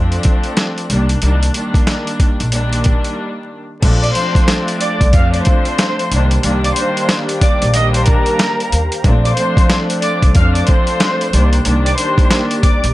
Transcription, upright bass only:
Already playing: F2
0.90 C2
1.22 C2
2.41 A#1
3.83 A#1
5.01 C2
5.14 F2
6.12 C2
6.44 C2
7.62 A#1
8.72 D#2
9.05 A#1
10.23 C2
10.36 F2
11.33 C2
11.66 C2
12.84 A#1

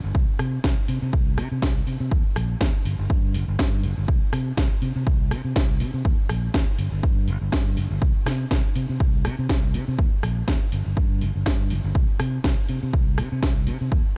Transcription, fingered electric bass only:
0.04 G1
0.15 C2
0.28 muted fingered electric bass stroke
0.39 C3
0.64 C2
0.89 C3
1.02 C3
1.13 C2
1.38 C3
1.52 C3
1.62 C2
1.87 C3
2.00 C3
2.12 D#2
2.36 A#1
2.61 D#2
2.85 G1
2.99 G1
3.10 G2
3.34 G1
3.48 G1
3.59 G2
3.84 G1
3.98 G1
4.08 C2
4.22 muted fingered electric bass stroke
4.33 C3
4.57 C2
4.82 C3
4.96 C3
5.07 C2
5.31 C3
5.45 C3
5.56 C2
5.80 C3
5.94 C3
6.05 D#2
6.30 A#1
6.54 D#2
6.79 G1
6.92 G1
7.03 G2
7.28 G1
7.41 G1
7.53 G2
7.77 G1
7.91 G1
8.02 C2
8.15 muted fingered electric bass stroke
8.26 C3
8.51 C2
8.76 C3
8.89 C3
9.00 C2
9.25 C3
9.39 C3
9.49 C2
9.74 C3
9.88 C3
9.99 D#2
10.23 A#1
10.48 D#2
10.73 G1
10.86 G1
10.97 G2
11.22 G1
11.35 G1
11.46 G2
11.71 G1
11.84 G1
11.95 C2
12.09 muted fingered electric bass stroke
12.20 C3
12.44 C2
12.69 C3
12.83 C3
12.93 C2
13.19 C3
13.32 C3
13.43 C2
13.67 C3
13.81 C3
13.92 D#2

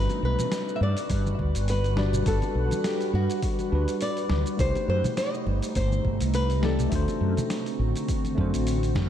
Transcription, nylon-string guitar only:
Already playing: B4
0.25 B4
0.76 E5
0.83 D5
1.70 B4
2.28 A4
2.86 G4
3.15 F#4
4.02 D5
4.60 C5
4.90 C5
5.18 D#5
5.76 C5
6.35 B4
6.64 A4

